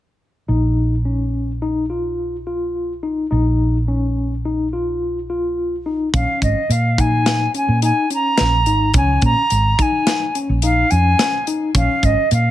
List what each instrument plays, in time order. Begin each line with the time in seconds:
0.48 fingered electric bass A#1, tine electric piano D#4
1.05 tine electric piano C#4
1.62 tine electric piano D#4
1.90 tine electric piano F4
2.47 tine electric piano F4
3.03 tine electric piano D#4
3.31 fingered electric bass A#1, tine electric piano D#4
3.88 tine electric piano C#4
4.45 tine electric piano D#4
4.73 tine electric piano F4
5.30 tine electric piano F4
5.86 tine electric piano D#4
6.13 fingered electric bass A#1, tine electric piano C#4, flute F5, kick, closed hi-hat
6.42 fingered electric bass G#1, flute D#5, kick, closed hi-hat
6.69 fingered electric bass A#2, flute F5, closed hi-hat
6.98 tine electric piano D#4, flute G#5, kick, closed hi-hat
7.26 snare, closed hi-hat
7.54 tine electric piano C#4, flute G#5, closed hi-hat
7.68 fingered electric bass A#2
7.82 tine electric piano D#4, flute G#5, closed hi-hat
8.10 tine electric piano C#4, flute A#5, closed hi-hat
8.38 fingered electric bass A#1, snare, closed hi-hat
8.66 fingered electric bass G#1, tine electric piano D#4, closed hi-hat
8.94 fingered electric bass C#2, tine electric piano C#4, flute G#5, kick, closed hi-hat
9.22 fingered electric bass A#2, flute A#5, kick, closed hi-hat
9.50 fingered electric bass G#1, closed hi-hat
9.79 tine electric piano D#4, flute G#5, kick, closed hi-hat
10.07 snare, closed hi-hat
10.35 tine electric piano C#4, closed hi-hat
10.49 fingered electric bass A#1
10.62 tine electric piano D#4, flute F5, closed hi-hat
10.91 fingered electric bass F2, tine electric piano C#4, flute G#5, closed hi-hat
11.19 snare, closed hi-hat
11.47 tine electric piano D#4, closed hi-hat
11.75 fingered electric bass A#1, tine electric piano C#4, flute F5, kick, closed hi-hat
12.03 fingered electric bass G#1, flute D#5, kick, closed hi-hat
12.31 fingered electric bass A#2, flute F5, closed hi-hat